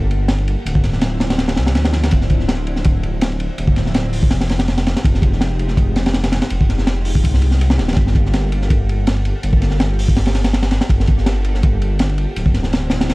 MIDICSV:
0, 0, Header, 1, 4, 480
1, 0, Start_track
1, 0, Tempo, 365854
1, 858, Time_signature, 4, 2, 24, 8
1, 17241, End_track
2, 0, Start_track
2, 0, Title_t, "String machine"
2, 0, Program_c, 0, 50
2, 617, Note_on_c, 0, 65, 84
2, 617, Note_on_c, 0, 69, 102
2, 618, Note_on_c, 0, 58, 92
2, 618, Note_on_c, 0, 67, 85
2, 831, Note_off_c, 0, 65, 0
2, 831, Note_off_c, 0, 69, 0
2, 832, Note_off_c, 0, 58, 0
2, 832, Note_off_c, 0, 67, 0
2, 856, Note_on_c, 0, 62, 86
2, 857, Note_on_c, 0, 53, 98
2, 857, Note_on_c, 0, 60, 89
2, 858, Note_on_c, 0, 64, 105
2, 2031, Note_off_c, 0, 53, 0
2, 2031, Note_off_c, 0, 60, 0
2, 2031, Note_off_c, 0, 62, 0
2, 2031, Note_off_c, 0, 64, 0
2, 2184, Note_on_c, 0, 53, 104
2, 2184, Note_on_c, 0, 60, 93
2, 2185, Note_on_c, 0, 62, 93
2, 2185, Note_on_c, 0, 64, 110
2, 2750, Note_off_c, 0, 53, 0
2, 2751, Note_off_c, 0, 60, 0
2, 2751, Note_off_c, 0, 62, 0
2, 2751, Note_off_c, 0, 64, 0
2, 2776, Note_on_c, 0, 53, 97
2, 2776, Note_on_c, 0, 60, 88
2, 2777, Note_on_c, 0, 62, 85
2, 2777, Note_on_c, 0, 64, 104
2, 3951, Note_off_c, 0, 53, 0
2, 3951, Note_off_c, 0, 60, 0
2, 3951, Note_off_c, 0, 62, 0
2, 3951, Note_off_c, 0, 64, 0
2, 4461, Note_on_c, 0, 60, 83
2, 4461, Note_on_c, 0, 62, 84
2, 4461, Note_on_c, 0, 64, 101
2, 4462, Note_on_c, 0, 53, 94
2, 4673, Note_off_c, 0, 60, 0
2, 4673, Note_off_c, 0, 62, 0
2, 4673, Note_off_c, 0, 64, 0
2, 4674, Note_off_c, 0, 53, 0
2, 4698, Note_on_c, 0, 62, 87
2, 4698, Note_on_c, 0, 64, 105
2, 4699, Note_on_c, 0, 53, 92
2, 4700, Note_on_c, 0, 60, 87
2, 5645, Note_off_c, 0, 62, 0
2, 5645, Note_off_c, 0, 64, 0
2, 5646, Note_off_c, 0, 53, 0
2, 5646, Note_off_c, 0, 60, 0
2, 6375, Note_on_c, 0, 65, 86
2, 6376, Note_on_c, 0, 56, 94
2, 6376, Note_on_c, 0, 67, 101
2, 6377, Note_on_c, 0, 63, 86
2, 6590, Note_off_c, 0, 56, 0
2, 6590, Note_off_c, 0, 65, 0
2, 6590, Note_off_c, 0, 67, 0
2, 6591, Note_off_c, 0, 63, 0
2, 6620, Note_on_c, 0, 63, 87
2, 6621, Note_on_c, 0, 65, 88
2, 6622, Note_on_c, 0, 56, 96
2, 6622, Note_on_c, 0, 67, 106
2, 7792, Note_off_c, 0, 63, 0
2, 7793, Note_off_c, 0, 65, 0
2, 7793, Note_off_c, 0, 67, 0
2, 7794, Note_off_c, 0, 56, 0
2, 8300, Note_on_c, 0, 65, 82
2, 8301, Note_on_c, 0, 56, 92
2, 8301, Note_on_c, 0, 63, 84
2, 8301, Note_on_c, 0, 67, 101
2, 8513, Note_off_c, 0, 56, 0
2, 8513, Note_off_c, 0, 63, 0
2, 8513, Note_off_c, 0, 65, 0
2, 8513, Note_off_c, 0, 67, 0
2, 8538, Note_on_c, 0, 56, 94
2, 8538, Note_on_c, 0, 65, 87
2, 8538, Note_on_c, 0, 67, 104
2, 8539, Note_on_c, 0, 63, 89
2, 9712, Note_off_c, 0, 56, 0
2, 9712, Note_off_c, 0, 63, 0
2, 9712, Note_off_c, 0, 65, 0
2, 9712, Note_off_c, 0, 67, 0
2, 9867, Note_on_c, 0, 65, 93
2, 9867, Note_on_c, 0, 67, 112
2, 9868, Note_on_c, 0, 63, 94
2, 9869, Note_on_c, 0, 56, 102
2, 10432, Note_off_c, 0, 63, 0
2, 10432, Note_off_c, 0, 65, 0
2, 10432, Note_off_c, 0, 67, 0
2, 10433, Note_off_c, 0, 56, 0
2, 10458, Note_on_c, 0, 58, 96
2, 10458, Note_on_c, 0, 65, 88
2, 10458, Note_on_c, 0, 67, 87
2, 10458, Note_on_c, 0, 69, 101
2, 11632, Note_off_c, 0, 58, 0
2, 11632, Note_off_c, 0, 65, 0
2, 11632, Note_off_c, 0, 67, 0
2, 11632, Note_off_c, 0, 69, 0
2, 12138, Note_on_c, 0, 58, 93
2, 12139, Note_on_c, 0, 65, 84
2, 12139, Note_on_c, 0, 67, 88
2, 12139, Note_on_c, 0, 69, 103
2, 12352, Note_off_c, 0, 58, 0
2, 12352, Note_off_c, 0, 65, 0
2, 12352, Note_off_c, 0, 67, 0
2, 12352, Note_off_c, 0, 69, 0
2, 12375, Note_on_c, 0, 58, 97
2, 12375, Note_on_c, 0, 65, 88
2, 12376, Note_on_c, 0, 67, 89
2, 12376, Note_on_c, 0, 69, 105
2, 13550, Note_off_c, 0, 58, 0
2, 13550, Note_off_c, 0, 65, 0
2, 13550, Note_off_c, 0, 69, 0
2, 13551, Note_off_c, 0, 67, 0
2, 14056, Note_on_c, 0, 58, 93
2, 14056, Note_on_c, 0, 65, 85
2, 14057, Note_on_c, 0, 67, 86
2, 14057, Note_on_c, 0, 69, 101
2, 14270, Note_off_c, 0, 58, 0
2, 14271, Note_off_c, 0, 65, 0
2, 14271, Note_off_c, 0, 67, 0
2, 14271, Note_off_c, 0, 69, 0
2, 14297, Note_on_c, 0, 58, 94
2, 14297, Note_on_c, 0, 65, 89
2, 14297, Note_on_c, 0, 69, 105
2, 14298, Note_on_c, 0, 67, 87
2, 15471, Note_off_c, 0, 58, 0
2, 15471, Note_off_c, 0, 65, 0
2, 15471, Note_off_c, 0, 69, 0
2, 15472, Note_off_c, 0, 67, 0
2, 15979, Note_on_c, 0, 65, 86
2, 15980, Note_on_c, 0, 58, 95
2, 15980, Note_on_c, 0, 67, 83
2, 15981, Note_on_c, 0, 69, 103
2, 16192, Note_off_c, 0, 65, 0
2, 16193, Note_off_c, 0, 58, 0
2, 16193, Note_off_c, 0, 67, 0
2, 16193, Note_off_c, 0, 69, 0
2, 16222, Note_on_c, 0, 62, 86
2, 16222, Note_on_c, 0, 64, 105
2, 16223, Note_on_c, 0, 53, 95
2, 16223, Note_on_c, 0, 60, 87
2, 17241, Note_off_c, 0, 53, 0
2, 17241, Note_off_c, 0, 60, 0
2, 17241, Note_off_c, 0, 62, 0
2, 17241, Note_off_c, 0, 64, 0
2, 17241, End_track
3, 0, Start_track
3, 0, Title_t, "Detuned saw bass"
3, 0, Program_c, 1, 39
3, 0, Note_on_c, 1, 31, 101
3, 725, Note_off_c, 1, 31, 0
3, 858, Note_on_c, 1, 26, 97
3, 2059, Note_on_c, 1, 36, 88
3, 2079, Note_off_c, 1, 26, 0
3, 2300, Note_on_c, 1, 38, 84
3, 2319, Note_off_c, 1, 36, 0
3, 2761, Note_off_c, 1, 38, 0
3, 2788, Note_on_c, 1, 26, 99
3, 4571, Note_off_c, 1, 26, 0
3, 4698, Note_on_c, 1, 26, 102
3, 5659, Note_on_c, 1, 29, 100
3, 5678, Note_off_c, 1, 26, 0
3, 6487, Note_off_c, 1, 29, 0
3, 6619, Note_on_c, 1, 29, 101
3, 8407, Note_off_c, 1, 29, 0
3, 8537, Note_on_c, 1, 29, 102
3, 9498, Note_on_c, 1, 36, 101
3, 9517, Note_off_c, 1, 29, 0
3, 10217, Note_on_c, 1, 27, 105
3, 10237, Note_off_c, 1, 36, 0
3, 10436, Note_off_c, 1, 27, 0
3, 10452, Note_on_c, 1, 31, 99
3, 12243, Note_off_c, 1, 31, 0
3, 12377, Note_on_c, 1, 31, 99
3, 14166, Note_off_c, 1, 31, 0
3, 14294, Note_on_c, 1, 31, 100
3, 16084, Note_off_c, 1, 31, 0
3, 16219, Note_on_c, 1, 26, 101
3, 17241, Note_off_c, 1, 26, 0
3, 17241, End_track
4, 0, Start_track
4, 0, Title_t, "Drums"
4, 141, Note_on_c, 9, 51, 66
4, 272, Note_off_c, 9, 51, 0
4, 372, Note_on_c, 9, 38, 112
4, 374, Note_on_c, 9, 51, 86
4, 503, Note_off_c, 9, 38, 0
4, 504, Note_off_c, 9, 51, 0
4, 504, Note_on_c, 9, 51, 41
4, 626, Note_off_c, 9, 51, 0
4, 626, Note_on_c, 9, 51, 65
4, 757, Note_off_c, 9, 51, 0
4, 871, Note_on_c, 9, 51, 89
4, 987, Note_on_c, 9, 36, 95
4, 1002, Note_off_c, 9, 51, 0
4, 1096, Note_on_c, 9, 38, 54
4, 1097, Note_on_c, 9, 51, 70
4, 1119, Note_off_c, 9, 36, 0
4, 1217, Note_off_c, 9, 38, 0
4, 1217, Note_on_c, 9, 38, 50
4, 1229, Note_off_c, 9, 51, 0
4, 1330, Note_on_c, 9, 51, 88
4, 1335, Note_off_c, 9, 38, 0
4, 1335, Note_on_c, 9, 38, 109
4, 1461, Note_off_c, 9, 51, 0
4, 1466, Note_off_c, 9, 38, 0
4, 1577, Note_on_c, 9, 38, 108
4, 1586, Note_on_c, 9, 51, 75
4, 1707, Note_off_c, 9, 38, 0
4, 1707, Note_on_c, 9, 38, 107
4, 1708, Note_off_c, 9, 51, 0
4, 1708, Note_on_c, 9, 51, 83
4, 1813, Note_off_c, 9, 38, 0
4, 1813, Note_on_c, 9, 38, 102
4, 1819, Note_off_c, 9, 51, 0
4, 1819, Note_on_c, 9, 51, 72
4, 1941, Note_off_c, 9, 38, 0
4, 1941, Note_on_c, 9, 38, 115
4, 1950, Note_off_c, 9, 51, 0
4, 1953, Note_on_c, 9, 51, 85
4, 2052, Note_off_c, 9, 38, 0
4, 2052, Note_on_c, 9, 38, 109
4, 2062, Note_off_c, 9, 51, 0
4, 2062, Note_on_c, 9, 51, 73
4, 2183, Note_off_c, 9, 38, 0
4, 2184, Note_on_c, 9, 38, 105
4, 2193, Note_off_c, 9, 51, 0
4, 2202, Note_on_c, 9, 51, 85
4, 2295, Note_off_c, 9, 51, 0
4, 2295, Note_on_c, 9, 51, 77
4, 2298, Note_off_c, 9, 38, 0
4, 2298, Note_on_c, 9, 38, 97
4, 2423, Note_off_c, 9, 38, 0
4, 2423, Note_on_c, 9, 38, 101
4, 2426, Note_off_c, 9, 51, 0
4, 2429, Note_on_c, 9, 51, 75
4, 2528, Note_off_c, 9, 38, 0
4, 2528, Note_on_c, 9, 38, 100
4, 2541, Note_off_c, 9, 51, 0
4, 2541, Note_on_c, 9, 51, 81
4, 2660, Note_off_c, 9, 38, 0
4, 2669, Note_off_c, 9, 51, 0
4, 2669, Note_on_c, 9, 38, 103
4, 2669, Note_on_c, 9, 51, 82
4, 2769, Note_off_c, 9, 51, 0
4, 2769, Note_on_c, 9, 51, 94
4, 2788, Note_on_c, 9, 36, 104
4, 2801, Note_off_c, 9, 38, 0
4, 2901, Note_off_c, 9, 51, 0
4, 2903, Note_on_c, 9, 38, 53
4, 2919, Note_off_c, 9, 36, 0
4, 3012, Note_on_c, 9, 51, 71
4, 3022, Note_on_c, 9, 36, 89
4, 3035, Note_off_c, 9, 38, 0
4, 3143, Note_off_c, 9, 51, 0
4, 3145, Note_on_c, 9, 38, 37
4, 3153, Note_off_c, 9, 36, 0
4, 3261, Note_off_c, 9, 38, 0
4, 3261, Note_on_c, 9, 38, 117
4, 3264, Note_on_c, 9, 51, 89
4, 3392, Note_off_c, 9, 38, 0
4, 3395, Note_off_c, 9, 51, 0
4, 3500, Note_on_c, 9, 51, 69
4, 3621, Note_on_c, 9, 38, 41
4, 3631, Note_off_c, 9, 51, 0
4, 3731, Note_on_c, 9, 51, 93
4, 3745, Note_on_c, 9, 36, 107
4, 3752, Note_off_c, 9, 38, 0
4, 3862, Note_off_c, 9, 51, 0
4, 3876, Note_off_c, 9, 36, 0
4, 3979, Note_on_c, 9, 51, 68
4, 4110, Note_off_c, 9, 51, 0
4, 4215, Note_on_c, 9, 51, 101
4, 4225, Note_on_c, 9, 38, 126
4, 4346, Note_off_c, 9, 51, 0
4, 4355, Note_on_c, 9, 51, 40
4, 4356, Note_off_c, 9, 38, 0
4, 4458, Note_off_c, 9, 51, 0
4, 4458, Note_on_c, 9, 51, 72
4, 4589, Note_off_c, 9, 51, 0
4, 4697, Note_on_c, 9, 51, 86
4, 4821, Note_on_c, 9, 36, 94
4, 4829, Note_off_c, 9, 51, 0
4, 4935, Note_on_c, 9, 51, 65
4, 4940, Note_on_c, 9, 38, 55
4, 4952, Note_off_c, 9, 36, 0
4, 5066, Note_off_c, 9, 51, 0
4, 5069, Note_off_c, 9, 38, 0
4, 5069, Note_on_c, 9, 38, 52
4, 5174, Note_on_c, 9, 51, 91
4, 5181, Note_off_c, 9, 38, 0
4, 5181, Note_on_c, 9, 38, 108
4, 5305, Note_off_c, 9, 51, 0
4, 5313, Note_off_c, 9, 38, 0
4, 5416, Note_on_c, 9, 46, 83
4, 5546, Note_on_c, 9, 36, 105
4, 5548, Note_off_c, 9, 46, 0
4, 5650, Note_on_c, 9, 38, 111
4, 5651, Note_on_c, 9, 51, 79
4, 5677, Note_off_c, 9, 36, 0
4, 5782, Note_off_c, 9, 38, 0
4, 5782, Note_on_c, 9, 38, 112
4, 5783, Note_off_c, 9, 51, 0
4, 5791, Note_on_c, 9, 51, 73
4, 5896, Note_off_c, 9, 51, 0
4, 5896, Note_on_c, 9, 51, 84
4, 5908, Note_off_c, 9, 38, 0
4, 5908, Note_on_c, 9, 38, 104
4, 6024, Note_off_c, 9, 38, 0
4, 6024, Note_on_c, 9, 38, 113
4, 6027, Note_off_c, 9, 51, 0
4, 6029, Note_on_c, 9, 51, 84
4, 6138, Note_off_c, 9, 51, 0
4, 6138, Note_on_c, 9, 51, 81
4, 6143, Note_off_c, 9, 38, 0
4, 6143, Note_on_c, 9, 38, 112
4, 6265, Note_off_c, 9, 51, 0
4, 6265, Note_on_c, 9, 51, 76
4, 6266, Note_off_c, 9, 38, 0
4, 6266, Note_on_c, 9, 38, 99
4, 6383, Note_off_c, 9, 51, 0
4, 6383, Note_on_c, 9, 51, 78
4, 6388, Note_off_c, 9, 38, 0
4, 6388, Note_on_c, 9, 38, 111
4, 6514, Note_off_c, 9, 38, 0
4, 6514, Note_off_c, 9, 51, 0
4, 6514, Note_on_c, 9, 38, 109
4, 6514, Note_on_c, 9, 51, 87
4, 6619, Note_on_c, 9, 36, 119
4, 6627, Note_off_c, 9, 51, 0
4, 6627, Note_on_c, 9, 51, 93
4, 6645, Note_off_c, 9, 38, 0
4, 6750, Note_off_c, 9, 36, 0
4, 6750, Note_on_c, 9, 38, 55
4, 6759, Note_off_c, 9, 51, 0
4, 6850, Note_on_c, 9, 36, 104
4, 6858, Note_on_c, 9, 51, 73
4, 6881, Note_off_c, 9, 38, 0
4, 6981, Note_off_c, 9, 36, 0
4, 6986, Note_on_c, 9, 38, 37
4, 6990, Note_off_c, 9, 51, 0
4, 7095, Note_off_c, 9, 38, 0
4, 7095, Note_on_c, 9, 38, 108
4, 7103, Note_on_c, 9, 51, 93
4, 7226, Note_off_c, 9, 38, 0
4, 7234, Note_off_c, 9, 51, 0
4, 7338, Note_on_c, 9, 51, 69
4, 7453, Note_on_c, 9, 38, 36
4, 7469, Note_off_c, 9, 51, 0
4, 7574, Note_on_c, 9, 36, 114
4, 7576, Note_on_c, 9, 51, 83
4, 7585, Note_off_c, 9, 38, 0
4, 7705, Note_off_c, 9, 36, 0
4, 7707, Note_off_c, 9, 51, 0
4, 7816, Note_on_c, 9, 51, 81
4, 7823, Note_on_c, 9, 38, 99
4, 7948, Note_off_c, 9, 51, 0
4, 7949, Note_on_c, 9, 51, 81
4, 7955, Note_off_c, 9, 38, 0
4, 7955, Note_on_c, 9, 38, 116
4, 8051, Note_off_c, 9, 38, 0
4, 8051, Note_on_c, 9, 38, 114
4, 8058, Note_off_c, 9, 51, 0
4, 8058, Note_on_c, 9, 51, 82
4, 8182, Note_off_c, 9, 38, 0
4, 8182, Note_off_c, 9, 51, 0
4, 8182, Note_on_c, 9, 38, 113
4, 8182, Note_on_c, 9, 51, 86
4, 8292, Note_off_c, 9, 38, 0
4, 8292, Note_on_c, 9, 38, 115
4, 8298, Note_off_c, 9, 51, 0
4, 8298, Note_on_c, 9, 51, 87
4, 8419, Note_off_c, 9, 51, 0
4, 8419, Note_on_c, 9, 51, 74
4, 8420, Note_off_c, 9, 38, 0
4, 8420, Note_on_c, 9, 38, 99
4, 8531, Note_off_c, 9, 51, 0
4, 8531, Note_on_c, 9, 51, 95
4, 8551, Note_off_c, 9, 38, 0
4, 8662, Note_off_c, 9, 51, 0
4, 8667, Note_on_c, 9, 36, 89
4, 8778, Note_on_c, 9, 38, 50
4, 8786, Note_on_c, 9, 51, 64
4, 8799, Note_off_c, 9, 36, 0
4, 8900, Note_off_c, 9, 38, 0
4, 8900, Note_on_c, 9, 38, 53
4, 8917, Note_off_c, 9, 51, 0
4, 9011, Note_off_c, 9, 38, 0
4, 9011, Note_on_c, 9, 38, 114
4, 9013, Note_on_c, 9, 51, 90
4, 9142, Note_off_c, 9, 38, 0
4, 9144, Note_off_c, 9, 51, 0
4, 9250, Note_on_c, 9, 46, 84
4, 9381, Note_off_c, 9, 46, 0
4, 9384, Note_on_c, 9, 36, 99
4, 9497, Note_off_c, 9, 36, 0
4, 9497, Note_on_c, 9, 36, 116
4, 9507, Note_on_c, 9, 51, 95
4, 9628, Note_off_c, 9, 36, 0
4, 9628, Note_on_c, 9, 38, 59
4, 9638, Note_off_c, 9, 51, 0
4, 9732, Note_on_c, 9, 51, 66
4, 9759, Note_off_c, 9, 38, 0
4, 9856, Note_on_c, 9, 38, 52
4, 9863, Note_off_c, 9, 51, 0
4, 9985, Note_on_c, 9, 51, 87
4, 9987, Note_off_c, 9, 38, 0
4, 10103, Note_on_c, 9, 38, 125
4, 10117, Note_off_c, 9, 51, 0
4, 10214, Note_off_c, 9, 38, 0
4, 10214, Note_on_c, 9, 38, 101
4, 10220, Note_on_c, 9, 51, 76
4, 10342, Note_off_c, 9, 38, 0
4, 10342, Note_on_c, 9, 38, 86
4, 10349, Note_off_c, 9, 51, 0
4, 10349, Note_on_c, 9, 51, 64
4, 10400, Note_off_c, 9, 51, 0
4, 10400, Note_on_c, 9, 51, 71
4, 10406, Note_off_c, 9, 38, 0
4, 10406, Note_on_c, 9, 38, 85
4, 10451, Note_off_c, 9, 51, 0
4, 10451, Note_on_c, 9, 51, 85
4, 10453, Note_on_c, 9, 36, 116
4, 10537, Note_off_c, 9, 38, 0
4, 10582, Note_off_c, 9, 51, 0
4, 10584, Note_off_c, 9, 36, 0
4, 10588, Note_on_c, 9, 38, 57
4, 10693, Note_on_c, 9, 36, 101
4, 10695, Note_on_c, 9, 51, 65
4, 10719, Note_off_c, 9, 38, 0
4, 10825, Note_off_c, 9, 36, 0
4, 10826, Note_off_c, 9, 51, 0
4, 10832, Note_on_c, 9, 38, 38
4, 10934, Note_on_c, 9, 51, 93
4, 10939, Note_off_c, 9, 38, 0
4, 10939, Note_on_c, 9, 38, 105
4, 11066, Note_off_c, 9, 51, 0
4, 11070, Note_off_c, 9, 38, 0
4, 11178, Note_on_c, 9, 51, 73
4, 11306, Note_on_c, 9, 38, 40
4, 11310, Note_off_c, 9, 51, 0
4, 11418, Note_on_c, 9, 36, 115
4, 11418, Note_on_c, 9, 51, 96
4, 11438, Note_off_c, 9, 38, 0
4, 11549, Note_off_c, 9, 36, 0
4, 11549, Note_off_c, 9, 51, 0
4, 11666, Note_on_c, 9, 51, 72
4, 11797, Note_off_c, 9, 51, 0
4, 11898, Note_on_c, 9, 51, 91
4, 11906, Note_on_c, 9, 38, 124
4, 12025, Note_off_c, 9, 51, 0
4, 12025, Note_on_c, 9, 51, 46
4, 12037, Note_off_c, 9, 38, 0
4, 12136, Note_off_c, 9, 51, 0
4, 12136, Note_on_c, 9, 51, 74
4, 12268, Note_off_c, 9, 51, 0
4, 12374, Note_on_c, 9, 51, 88
4, 12501, Note_on_c, 9, 36, 101
4, 12505, Note_off_c, 9, 51, 0
4, 12617, Note_on_c, 9, 51, 73
4, 12624, Note_on_c, 9, 38, 54
4, 12632, Note_off_c, 9, 36, 0
4, 12735, Note_off_c, 9, 38, 0
4, 12735, Note_on_c, 9, 38, 49
4, 12748, Note_off_c, 9, 51, 0
4, 12855, Note_on_c, 9, 51, 83
4, 12857, Note_off_c, 9, 38, 0
4, 12857, Note_on_c, 9, 38, 118
4, 12986, Note_off_c, 9, 51, 0
4, 12988, Note_off_c, 9, 38, 0
4, 13106, Note_on_c, 9, 46, 76
4, 13229, Note_on_c, 9, 36, 101
4, 13237, Note_off_c, 9, 46, 0
4, 13335, Note_on_c, 9, 51, 71
4, 13336, Note_on_c, 9, 38, 105
4, 13361, Note_off_c, 9, 36, 0
4, 13456, Note_off_c, 9, 51, 0
4, 13456, Note_on_c, 9, 51, 76
4, 13468, Note_off_c, 9, 38, 0
4, 13470, Note_on_c, 9, 38, 120
4, 13575, Note_off_c, 9, 38, 0
4, 13575, Note_off_c, 9, 51, 0
4, 13575, Note_on_c, 9, 38, 101
4, 13575, Note_on_c, 9, 51, 74
4, 13701, Note_off_c, 9, 38, 0
4, 13701, Note_off_c, 9, 51, 0
4, 13701, Note_on_c, 9, 38, 114
4, 13701, Note_on_c, 9, 51, 86
4, 13820, Note_off_c, 9, 38, 0
4, 13820, Note_on_c, 9, 38, 116
4, 13831, Note_off_c, 9, 51, 0
4, 13831, Note_on_c, 9, 51, 88
4, 13940, Note_off_c, 9, 38, 0
4, 13940, Note_on_c, 9, 38, 110
4, 13942, Note_off_c, 9, 51, 0
4, 13942, Note_on_c, 9, 51, 78
4, 14050, Note_off_c, 9, 51, 0
4, 14050, Note_on_c, 9, 51, 85
4, 14057, Note_off_c, 9, 38, 0
4, 14057, Note_on_c, 9, 38, 97
4, 14181, Note_off_c, 9, 51, 0
4, 14182, Note_off_c, 9, 38, 0
4, 14182, Note_on_c, 9, 38, 117
4, 14189, Note_on_c, 9, 51, 79
4, 14294, Note_on_c, 9, 36, 117
4, 14301, Note_off_c, 9, 51, 0
4, 14301, Note_on_c, 9, 51, 94
4, 14313, Note_off_c, 9, 38, 0
4, 14425, Note_off_c, 9, 36, 0
4, 14429, Note_on_c, 9, 38, 60
4, 14432, Note_off_c, 9, 51, 0
4, 14528, Note_on_c, 9, 51, 73
4, 14540, Note_on_c, 9, 36, 104
4, 14561, Note_off_c, 9, 38, 0
4, 14659, Note_off_c, 9, 51, 0
4, 14668, Note_on_c, 9, 38, 37
4, 14671, Note_off_c, 9, 36, 0
4, 14776, Note_off_c, 9, 38, 0
4, 14776, Note_on_c, 9, 38, 123
4, 14778, Note_on_c, 9, 51, 92
4, 14907, Note_off_c, 9, 38, 0
4, 14909, Note_off_c, 9, 51, 0
4, 15016, Note_on_c, 9, 51, 77
4, 15147, Note_off_c, 9, 51, 0
4, 15147, Note_on_c, 9, 38, 36
4, 15259, Note_on_c, 9, 51, 88
4, 15264, Note_on_c, 9, 36, 114
4, 15278, Note_off_c, 9, 38, 0
4, 15390, Note_off_c, 9, 51, 0
4, 15395, Note_off_c, 9, 36, 0
4, 15503, Note_on_c, 9, 51, 73
4, 15634, Note_off_c, 9, 51, 0
4, 15732, Note_on_c, 9, 51, 96
4, 15744, Note_on_c, 9, 38, 127
4, 15863, Note_off_c, 9, 51, 0
4, 15866, Note_on_c, 9, 51, 45
4, 15875, Note_off_c, 9, 38, 0
4, 15977, Note_off_c, 9, 51, 0
4, 15977, Note_on_c, 9, 51, 67
4, 16108, Note_off_c, 9, 51, 0
4, 16219, Note_on_c, 9, 51, 90
4, 16344, Note_on_c, 9, 36, 93
4, 16351, Note_off_c, 9, 51, 0
4, 16453, Note_on_c, 9, 38, 55
4, 16457, Note_on_c, 9, 51, 67
4, 16475, Note_off_c, 9, 36, 0
4, 16575, Note_off_c, 9, 38, 0
4, 16575, Note_on_c, 9, 38, 59
4, 16589, Note_off_c, 9, 51, 0
4, 16699, Note_on_c, 9, 51, 82
4, 16706, Note_off_c, 9, 38, 0
4, 16707, Note_on_c, 9, 38, 112
4, 16830, Note_off_c, 9, 51, 0
4, 16838, Note_off_c, 9, 38, 0
4, 16922, Note_on_c, 9, 38, 99
4, 16941, Note_on_c, 9, 51, 86
4, 17053, Note_off_c, 9, 38, 0
4, 17065, Note_on_c, 9, 38, 108
4, 17070, Note_off_c, 9, 51, 0
4, 17070, Note_on_c, 9, 51, 81
4, 17181, Note_off_c, 9, 38, 0
4, 17181, Note_on_c, 9, 38, 105
4, 17182, Note_off_c, 9, 51, 0
4, 17182, Note_on_c, 9, 51, 77
4, 17241, Note_off_c, 9, 38, 0
4, 17241, Note_off_c, 9, 51, 0
4, 17241, End_track
0, 0, End_of_file